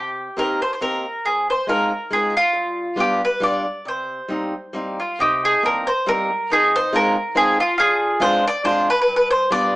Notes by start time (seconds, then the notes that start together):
Already playing: C3 G4
0.37 A#3 C4 D#4 G4 A#4
0.62 C5
0.73 C5
0.81 A#3 C4 D#4 G4 A#4
1.25 F2 G#4
1.50 C5
1.67 G#3 C4 D#4 F4 A#4
2.11 G#3 C4 D#4 F4 G#4
2.37 F4
2.53 G2
2.96 G3 B3 D4 F4
3.00 G4
3.25 B4
3.40 G3 B3 D4 F4 D5
3.85 C3 C5
4.29 G3 A#3 C4 D#4
4.73 G3 A#3 C4 D#4
5.00 F4
5.19 C3 D#4 G4
5.45 G#4
5.63 G3 A#3 C4 D#4 A#4
5.87 C5
6.06 G3 A#3 C4 D#4 A#4
6.50 F2 D#4 G#4
6.76 C5
6.93 G#3 C4 D#4 F4 A#4
7.35 G#3 C4 D#4 F4 G#4
7.60 F4
7.78 D3 F4 G#4
8.20 G#3 C4 D4 F4 C5
8.48 D5
8.64 G#3 C4 D4 F4 C5
8.90 B4
9.02 B4
9.07 G2
9.16 B4
9.30 C5
9.51 G3 B3 D4 F4 D5